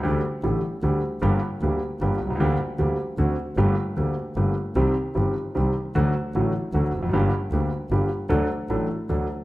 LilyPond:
<<
  \new Staff \with { instrumentName = "Grand piano" } { \clef bass \time 3/4 \key g \minor \tempo 4 = 153 <d, d g a g'>8 r8 <a,, a, d g a g'>8 r8 <d, d g a g'>8 r8 | <g,, g, d g bes g'>8 r8 <d, d g bes g'>8 r8 <g,, g, d g bes g'>8 r32 b,,32 c,32 cis,32 | <d, d g bes g'>8 r8 <d, d g bes g'>8 r8 <d, d a c' fis'>8 r8 | <g,, g, d a bes g'>8 r8 <d, d a bes g'>8 r8 <g,, g, d a bes g'>8 r8 |
<c, c ees g c' g'>8 r8 <g,, g, ees g c' g'>8 r8 <c, c ees g c' g'>8 r8 | <d, d fis a fis'>8 r8 <a,, a, d fis a fis'>8 r8 <d, d fis a fis'>8 r32 e,32 f,32 fis,32 | <g,, g, d g bes g'>8 r8 <d, d g bes g'>8 r8 <g,, g, d g bes g'>8 r8 | <d, d fis a d' a'>8 r8 <a,, a, fis a d' a'>8 r8 <d, d fis a d' a'>8 r8 | }
  \new Staff \with { instrumentName = "Double bass" } { \clef bass \time 3/4 \key g \minor d,8 r8 a,,8 r8 d,8 r8 | g,,8 r8 d,8 r8 g,,8 c,8 | d,8 r8 d,8 r8 d,8 r8 | g,,8 r8 d,8 r8 g,,8 r8 |
c,8 r8 g,,8 r8 c,8 r8 | d,8 r8 a,,8 r8 d,8 f,,8 | g,,8 r8 d,8 r8 g,,8 r8 | d,8 r8 a,,8 r8 d,8 r8 | }
>>